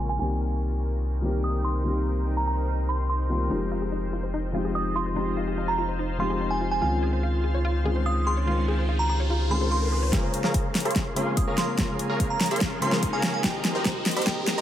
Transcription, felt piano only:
0.00 0.22 C#3 medium
0.00 0.22 G#3 medium
0.00 0.20 A#3 medium
0.00 0.21 C4 medium
0.00 0.22 F4 medium
0.18 1.20 D#3 medium
0.18 1.20 G3 medium
0.18 1.21 A#3 medium
0.18 1.21 C4 medium
0.18 1.22 G4 medium
1.21 1.82 D#3 medium
1.21 1.82 G3 medium
1.21 1.83 A#3 medium
1.21 1.83 C4 medium
1.25 1.84 G4 medium
1.83 2.85 D#3 medium
1.83 2.86 G3 medium
1.83 2.86 A#3 medium
1.83 2.87 C4 medium
1.83 2.87 G4 medium
3.29 3.48 D#3 medium
3.29 3.48 G3 medium
3.29 3.48 A#3 medium
3.29 3.49 C4 medium
3.29 3.49 F4 medium
3.49 4.51 F3 medium
3.49 4.51 G#3 medium
3.49 4.52 C4 medium
3.49 4.52 D#4 medium
3.53 4.53 G4 medium
4.52 5.13 F3 medium
4.52 5.13 G#3 medium
4.52 5.14 C4 medium
4.52 5.14 D#4 medium
4.52 5.15 G4 medium
5.14 6.16 F3 medium
5.14 6.17 G#3 medium
5.14 6.17 C4 medium
5.14 6.18 D#4 medium
5.14 6.18 G4 medium
6.17 6.78 F3 medium
6.17 6.79 G#3 medium
6.17 6.79 C4 medium
6.17 6.80 D#4 medium
6.21 6.80 G4 medium
6.80 7.82 D#3 medium
6.80 7.82 G#3 medium
6.80 7.83 C4 medium
6.80 7.83 C#4 medium
6.80 7.84 F4 medium
7.83 8.44 D#3 medium
7.83 8.44 G#3 medium
7.83 8.45 C4 medium
7.83 8.45 C#4 medium
7.87 8.46 F4 medium
8.45 9.47 D#3 medium
8.45 9.48 G#3 medium
8.45 9.48 C4 medium
8.45 9.49 C#4 medium
8.49 9.49 F4 medium
9.49 10.09 D#3 medium
9.49 10.10 G#3 medium
9.49 10.11 C4 medium
9.49 10.11 C#4 medium
9.53 10.12 F4 medium
10.11 11.13 C#3 medium
10.11 11.13 G#3 medium
10.11 11.14 A#3 medium
10.11 11.15 F4 medium
11.14 11.75 C#3 medium
11.14 11.75 G#3 medium
11.14 11.76 A#3 medium
11.14 11.76 C4 medium
11.14 11.77 F4 medium
11.76 12.78 C#3 medium
11.76 12.79 G#3 medium
11.76 12.79 A#3 medium
11.80 12.80 F4 medium
12.80 13.40 C#3 medium
12.80 13.41 G#3 medium
12.80 13.41 A#3 medium
12.80 13.42 C4 medium
12.80 13.42 F4 loud
13.42 14.23 D#3 medium
13.42 14.24 G3 medium
13.42 14.25 A#3 medium
13.42 14.26 C4 medium
13.46 14.26 G4 medium
14.25 14.61 D#3 medium
14.25 14.61 G3 medium
14.25 14.61 A#3 medium
14.25 14.61 C4 medium
14.25 14.61 G4 medium

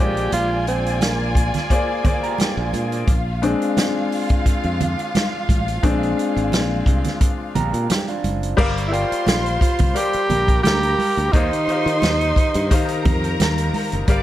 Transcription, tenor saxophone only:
0.00 0.32 G4 loud
0.34 0.65 F4 loud
0.68 1.03 C4 medium
1.02 1.36 A#3 medium
8.88 8.95 E4 medium
8.93 9.61 F4 loud
9.62 9.98 F4 loud
9.96 10.63 G4 loud
10.63 11.33 G4 loud
11.32 13.39 D#4 loud

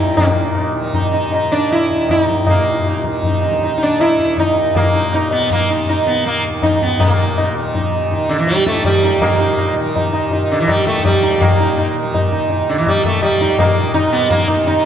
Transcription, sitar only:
0.00 0.17 D#4 medium
0.17 0.71 A#3 medium
0.94 1.12 D#4 soft
1.13 1.31 D#4 soft
1.34 1.51 D#4 soft
1.52 1.71 D4 medium
1.72 2.07 E4 medium
2.11 2.22 E4 medium
2.22 2.49 D#4 medium
2.49 3.02 A#3 medium
2.88 3.05 D#4 soft
3.26 3.43 D#4 soft
3.44 3.61 D#4 soft
3.63 3.77 D#4 soft
3.78 3.82 D#4 medium
3.83 4.00 D4 medium
4.01 4.39 E4 medium
4.39 4.76 D#4 medium
4.76 5.15 A#3 medium
4.95 5.12 D#4 soft
5.14 5.33 D#4 medium
5.32 5.49 B3 medium
5.52 5.69 A#3 medium
5.70 5.87 D#4 soft
5.89 6.08 D#4 medium
6.06 6.26 B3 medium
6.26 6.43 A#3 medium
6.63 6.82 D#4 medium
6.82 6.99 B3 medium
7.00 7.52 A#3 medium
7.00 7.17 D#4 soft
7.38 7.55 D#4 soft
7.75 7.92 D#4 soft
8.11 8.29 D#4 soft
8.29 8.38 D3 medium
8.39 8.49 E3 medium
8.47 8.66 G3 medium
8.66 8.84 A3 medium
8.85 9.23 G3 medium
9.04 9.21 D#4 soft
9.22 9.73 A#3 medium
9.40 9.58 D#4 soft
9.59 9.76 D#4 soft
9.95 10.11 D#4 soft
10.12 10.30 D#4 soft
10.32 10.49 D#4 soft
10.52 10.60 D3 medium
10.60 10.69 E3 medium
10.69 10.86 G3 medium
10.87 11.04 A3 medium
11.05 11.42 G3 medium
11.22 11.40 D#4 soft
11.40 11.92 A#3 medium
11.60 11.77 D#4 soft
11.78 11.95 D#4 soft
12.14 12.31 D#4 soft
12.32 12.49 D#4 soft
12.50 12.67 D#4 soft
12.69 12.78 D3 medium
12.78 12.87 E3 medium
12.88 13.04 G3 medium
13.05 13.22 A3 medium
13.23 13.56 G3 medium
13.41 13.57 D#4 soft
13.59 13.94 A#3 medium
13.94 14.12 D#4 loud
14.12 14.30 B3 medium
14.30 14.47 A#3 medium
14.48 14.64 D#4 soft
14.67 14.85 D#4 medium

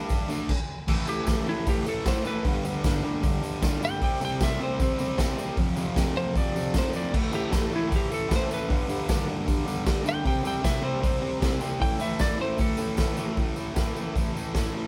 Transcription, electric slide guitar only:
0.00 0.33 E5 loud
1.09 1.47 G4 medium
1.49 1.67 E4 medium
1.69 1.87 G4 medium
1.89 2.07 A4 medium
2.08 2.26 C5 medium
2.27 3.02 B4 loud
3.85 4.02 G5 loud
4.04 4.22 G5 loud
4.25 4.42 G5 loud
4.43 4.61 E5 medium
4.63 5.37 C5 loud
6.17 6.36 C5 medium
6.37 6.74 D5 loud
6.78 6.95 C5 medium
6.97 7.14 D5 medium
7.35 7.72 G4 loud
7.76 7.93 E4 medium
7.96 8.13 G4 medium
8.14 8.31 A4 medium
8.36 8.52 C5 medium
8.54 9.27 B4 loud
10.09 10.26 G5 loud
10.27 10.45 G5 medium
10.47 10.65 G5 loud
10.65 10.83 E5 medium
10.85 11.60 C5 loud
11.82 12.00 G5 medium
12.01 12.20 E5 loud
12.21 12.39 D5 medium
12.41 12.59 C5 medium
12.61 13.36 A4 loud

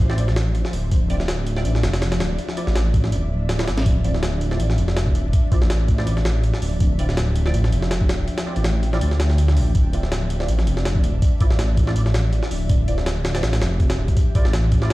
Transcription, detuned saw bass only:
0.00 0.63 A1 medium
0.73 0.90 D1 medium
0.92 1.64 D1 loud
1.65 1.82 A1 medium
1.84 2.19 F1 medium
2.20 2.37 D1 loud
2.67 3.14 A1 medium
3.12 3.69 D1 medium
3.68 3.84 A1 loud
3.86 4.58 D1 loud
4.60 4.76 A1 medium
4.78 5.14 F1 medium
5.15 5.32 D1 loud
5.62 6.52 A1 medium
6.62 6.79 D1 medium
6.81 7.53 D1 loud
7.54 7.71 A1 medium
7.73 8.08 F1 medium
8.09 8.26 D1 loud
8.56 9.01 A1 loud
9.01 9.58 D2 loud
9.57 9.73 A1 medium
9.75 10.47 D1 loud
10.49 10.65 A1 medium
10.67 11.03 F1 medium
11.04 11.21 D1 loud
11.51 12.41 A1 loud
12.51 12.68 D1 medium
12.69 13.42 D1 loud
13.43 13.60 A1 medium
13.61 13.97 F1 medium
13.98 14.15 D1 loud
14.45 14.90 A1 medium

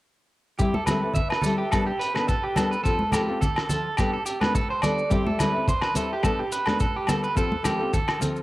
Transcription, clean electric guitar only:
0.59 0.73 G4 medium
0.74 0.86 A4 medium
0.86 1.14 B4 medium
1.15 1.29 E5 medium
1.30 1.43 B4 medium
1.42 1.57 A4 medium
1.58 1.71 G4 medium
1.71 1.86 A4 medium
1.86 1.99 G4 medium
1.99 2.14 B4 medium
2.15 2.28 B4 medium
2.28 2.43 A4 medium
2.43 2.56 G4 medium
2.57 2.71 A4 medium
2.71 2.83 B4 medium
2.84 3.11 A4 medium
3.13 3.40 G4 medium
3.41 3.68 A4 medium
3.69 3.96 A4 medium
3.98 4.12 G4 medium
4.13 4.25 A4 medium
4.26 4.40 G4 medium
4.41 4.54 B4 medium
4.55 4.69 A4 medium
4.70 4.82 C5 medium
4.83 5.10 D5 medium
5.10 5.25 G4 medium
5.27 5.39 A4 medium
5.41 5.67 B4 medium
5.69 5.82 C5 medium
5.83 5.95 B4 medium
5.96 6.10 A4 medium
6.13 6.24 G4 medium
6.24 6.39 A4 medium
6.39 6.52 G4 medium
6.52 6.67 B4 medium
6.69 6.80 B4 medium
6.81 6.95 A4 medium
6.96 7.09 G4 medium
7.09 7.23 A4 medium
7.24 7.36 B4 medium
7.37 7.64 A4 medium
7.65 7.92 G4 medium
7.94 8.21 A4 medium
8.22 muted clean electric guitar stroke medium

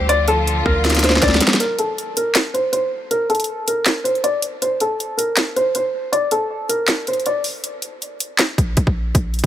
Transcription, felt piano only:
0.09 0.24 D5 medium
0.28 0.63 A4 medium
0.65 1.01 A#4 medium
1.04 1.19 C5 medium
1.23 1.38 D5 medium
1.60 1.75 A#4 medium
1.79 2.14 A4 medium
2.17 2.52 A#4 medium
2.54 2.70 C5 medium
2.73 3.08 C5 medium
3.11 3.26 A#4 medium
3.30 3.65 A4 medium
3.68 4.03 A#4 medium
4.04 4.20 C5 medium
4.24 4.39 D5 medium
4.62 4.77 C5 medium
4.81 5.16 A4 medium
5.17 5.53 A#4 medium
5.56 5.72 C5 medium
5.75 6.11 C5 medium
6.12 6.28 D5 medium
6.32 6.67 A4 medium
6.69 7.05 A#4 medium
7.08 7.23 C5 medium
7.26 7.42 D5 medium

